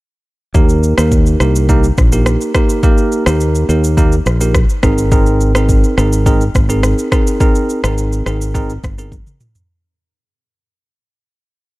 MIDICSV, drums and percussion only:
0, 0, Header, 1, 2, 480
1, 0, Start_track
1, 0, Key_signature, -3, "major"
1, 0, Tempo, 571429
1, 459, Time_signature, 4, 2, 24, 8
1, 9908, End_track
2, 0, Start_track
2, 0, Title_t, "Drums"
2, 458, Note_on_c, 9, 82, 60
2, 459, Note_on_c, 9, 36, 109
2, 542, Note_off_c, 9, 82, 0
2, 543, Note_off_c, 9, 36, 0
2, 580, Note_on_c, 9, 82, 47
2, 664, Note_off_c, 9, 82, 0
2, 700, Note_on_c, 9, 82, 56
2, 784, Note_off_c, 9, 82, 0
2, 820, Note_on_c, 9, 37, 113
2, 826, Note_on_c, 9, 82, 88
2, 904, Note_off_c, 9, 37, 0
2, 910, Note_off_c, 9, 82, 0
2, 938, Note_on_c, 9, 36, 91
2, 938, Note_on_c, 9, 82, 76
2, 1022, Note_off_c, 9, 36, 0
2, 1022, Note_off_c, 9, 82, 0
2, 1061, Note_on_c, 9, 82, 48
2, 1145, Note_off_c, 9, 82, 0
2, 1178, Note_on_c, 9, 37, 92
2, 1181, Note_on_c, 9, 82, 55
2, 1262, Note_off_c, 9, 37, 0
2, 1265, Note_off_c, 9, 82, 0
2, 1307, Note_on_c, 9, 82, 91
2, 1391, Note_off_c, 9, 82, 0
2, 1418, Note_on_c, 9, 36, 89
2, 1421, Note_on_c, 9, 82, 75
2, 1502, Note_off_c, 9, 36, 0
2, 1505, Note_off_c, 9, 82, 0
2, 1543, Note_on_c, 9, 82, 48
2, 1627, Note_off_c, 9, 82, 0
2, 1660, Note_on_c, 9, 82, 49
2, 1662, Note_on_c, 9, 36, 93
2, 1666, Note_on_c, 9, 37, 87
2, 1744, Note_off_c, 9, 82, 0
2, 1746, Note_off_c, 9, 36, 0
2, 1750, Note_off_c, 9, 37, 0
2, 1784, Note_on_c, 9, 82, 101
2, 1868, Note_off_c, 9, 82, 0
2, 1899, Note_on_c, 9, 37, 97
2, 1900, Note_on_c, 9, 82, 68
2, 1983, Note_off_c, 9, 37, 0
2, 1984, Note_off_c, 9, 82, 0
2, 2025, Note_on_c, 9, 82, 50
2, 2109, Note_off_c, 9, 82, 0
2, 2138, Note_on_c, 9, 37, 107
2, 2139, Note_on_c, 9, 82, 56
2, 2140, Note_on_c, 9, 36, 86
2, 2222, Note_off_c, 9, 37, 0
2, 2223, Note_off_c, 9, 82, 0
2, 2224, Note_off_c, 9, 36, 0
2, 2264, Note_on_c, 9, 82, 90
2, 2348, Note_off_c, 9, 82, 0
2, 2378, Note_on_c, 9, 82, 57
2, 2379, Note_on_c, 9, 36, 112
2, 2462, Note_off_c, 9, 82, 0
2, 2463, Note_off_c, 9, 36, 0
2, 2501, Note_on_c, 9, 82, 44
2, 2585, Note_off_c, 9, 82, 0
2, 2621, Note_on_c, 9, 82, 56
2, 2705, Note_off_c, 9, 82, 0
2, 2741, Note_on_c, 9, 37, 117
2, 2746, Note_on_c, 9, 82, 84
2, 2825, Note_off_c, 9, 37, 0
2, 2830, Note_off_c, 9, 82, 0
2, 2860, Note_on_c, 9, 82, 73
2, 2944, Note_off_c, 9, 82, 0
2, 2983, Note_on_c, 9, 82, 51
2, 3067, Note_off_c, 9, 82, 0
2, 3103, Note_on_c, 9, 82, 57
2, 3187, Note_off_c, 9, 82, 0
2, 3226, Note_on_c, 9, 82, 85
2, 3310, Note_off_c, 9, 82, 0
2, 3339, Note_on_c, 9, 36, 89
2, 3340, Note_on_c, 9, 82, 75
2, 3423, Note_off_c, 9, 36, 0
2, 3424, Note_off_c, 9, 82, 0
2, 3462, Note_on_c, 9, 82, 48
2, 3546, Note_off_c, 9, 82, 0
2, 3580, Note_on_c, 9, 82, 51
2, 3585, Note_on_c, 9, 37, 91
2, 3664, Note_off_c, 9, 82, 0
2, 3669, Note_off_c, 9, 37, 0
2, 3703, Note_on_c, 9, 82, 102
2, 3787, Note_off_c, 9, 82, 0
2, 3818, Note_on_c, 9, 36, 106
2, 3818, Note_on_c, 9, 37, 97
2, 3820, Note_on_c, 9, 82, 70
2, 3902, Note_off_c, 9, 36, 0
2, 3902, Note_off_c, 9, 37, 0
2, 3904, Note_off_c, 9, 82, 0
2, 3944, Note_on_c, 9, 82, 52
2, 4028, Note_off_c, 9, 82, 0
2, 4058, Note_on_c, 9, 37, 104
2, 4059, Note_on_c, 9, 82, 54
2, 4060, Note_on_c, 9, 36, 86
2, 4142, Note_off_c, 9, 37, 0
2, 4143, Note_off_c, 9, 82, 0
2, 4144, Note_off_c, 9, 36, 0
2, 4184, Note_on_c, 9, 82, 88
2, 4268, Note_off_c, 9, 82, 0
2, 4299, Note_on_c, 9, 36, 113
2, 4299, Note_on_c, 9, 82, 59
2, 4383, Note_off_c, 9, 36, 0
2, 4383, Note_off_c, 9, 82, 0
2, 4420, Note_on_c, 9, 82, 45
2, 4504, Note_off_c, 9, 82, 0
2, 4541, Note_on_c, 9, 82, 56
2, 4625, Note_off_c, 9, 82, 0
2, 4662, Note_on_c, 9, 37, 116
2, 4667, Note_on_c, 9, 82, 84
2, 4746, Note_off_c, 9, 37, 0
2, 4751, Note_off_c, 9, 82, 0
2, 4779, Note_on_c, 9, 36, 89
2, 4781, Note_on_c, 9, 82, 77
2, 4863, Note_off_c, 9, 36, 0
2, 4865, Note_off_c, 9, 82, 0
2, 4904, Note_on_c, 9, 82, 48
2, 4988, Note_off_c, 9, 82, 0
2, 5020, Note_on_c, 9, 37, 92
2, 5024, Note_on_c, 9, 82, 57
2, 5104, Note_off_c, 9, 37, 0
2, 5108, Note_off_c, 9, 82, 0
2, 5147, Note_on_c, 9, 82, 85
2, 5231, Note_off_c, 9, 82, 0
2, 5259, Note_on_c, 9, 36, 90
2, 5261, Note_on_c, 9, 82, 71
2, 5343, Note_off_c, 9, 36, 0
2, 5345, Note_off_c, 9, 82, 0
2, 5384, Note_on_c, 9, 82, 48
2, 5468, Note_off_c, 9, 82, 0
2, 5501, Note_on_c, 9, 82, 49
2, 5502, Note_on_c, 9, 36, 94
2, 5507, Note_on_c, 9, 37, 86
2, 5585, Note_off_c, 9, 82, 0
2, 5586, Note_off_c, 9, 36, 0
2, 5591, Note_off_c, 9, 37, 0
2, 5626, Note_on_c, 9, 82, 102
2, 5710, Note_off_c, 9, 82, 0
2, 5740, Note_on_c, 9, 37, 98
2, 5741, Note_on_c, 9, 82, 70
2, 5824, Note_off_c, 9, 37, 0
2, 5825, Note_off_c, 9, 82, 0
2, 5867, Note_on_c, 9, 82, 50
2, 5951, Note_off_c, 9, 82, 0
2, 5981, Note_on_c, 9, 36, 86
2, 5981, Note_on_c, 9, 37, 104
2, 5982, Note_on_c, 9, 82, 55
2, 6065, Note_off_c, 9, 36, 0
2, 6065, Note_off_c, 9, 37, 0
2, 6066, Note_off_c, 9, 82, 0
2, 6108, Note_on_c, 9, 82, 91
2, 6192, Note_off_c, 9, 82, 0
2, 6220, Note_on_c, 9, 36, 112
2, 6221, Note_on_c, 9, 82, 58
2, 6304, Note_off_c, 9, 36, 0
2, 6305, Note_off_c, 9, 82, 0
2, 6343, Note_on_c, 9, 82, 49
2, 6427, Note_off_c, 9, 82, 0
2, 6464, Note_on_c, 9, 82, 54
2, 6548, Note_off_c, 9, 82, 0
2, 6583, Note_on_c, 9, 37, 111
2, 6589, Note_on_c, 9, 82, 86
2, 6667, Note_off_c, 9, 37, 0
2, 6673, Note_off_c, 9, 82, 0
2, 6702, Note_on_c, 9, 82, 76
2, 6786, Note_off_c, 9, 82, 0
2, 6825, Note_on_c, 9, 82, 51
2, 6909, Note_off_c, 9, 82, 0
2, 6941, Note_on_c, 9, 37, 93
2, 6945, Note_on_c, 9, 82, 57
2, 7025, Note_off_c, 9, 37, 0
2, 7029, Note_off_c, 9, 82, 0
2, 7069, Note_on_c, 9, 82, 88
2, 7153, Note_off_c, 9, 82, 0
2, 7180, Note_on_c, 9, 36, 83
2, 7182, Note_on_c, 9, 82, 72
2, 7264, Note_off_c, 9, 36, 0
2, 7266, Note_off_c, 9, 82, 0
2, 7305, Note_on_c, 9, 82, 47
2, 7389, Note_off_c, 9, 82, 0
2, 7423, Note_on_c, 9, 36, 97
2, 7423, Note_on_c, 9, 82, 48
2, 7429, Note_on_c, 9, 37, 88
2, 7507, Note_off_c, 9, 36, 0
2, 7507, Note_off_c, 9, 82, 0
2, 7513, Note_off_c, 9, 37, 0
2, 7546, Note_on_c, 9, 82, 103
2, 7630, Note_off_c, 9, 82, 0
2, 7659, Note_on_c, 9, 36, 104
2, 7661, Note_on_c, 9, 48, 54
2, 7662, Note_on_c, 9, 82, 68
2, 7743, Note_off_c, 9, 36, 0
2, 7745, Note_off_c, 9, 48, 0
2, 7746, Note_off_c, 9, 82, 0
2, 7785, Note_on_c, 9, 47, 60
2, 7786, Note_on_c, 9, 82, 52
2, 7869, Note_off_c, 9, 47, 0
2, 7870, Note_off_c, 9, 82, 0
2, 7900, Note_on_c, 9, 45, 86
2, 7900, Note_on_c, 9, 82, 58
2, 7984, Note_off_c, 9, 45, 0
2, 7984, Note_off_c, 9, 82, 0
2, 8024, Note_on_c, 9, 43, 83
2, 8025, Note_on_c, 9, 82, 95
2, 8108, Note_off_c, 9, 43, 0
2, 8109, Note_off_c, 9, 82, 0
2, 9908, End_track
0, 0, End_of_file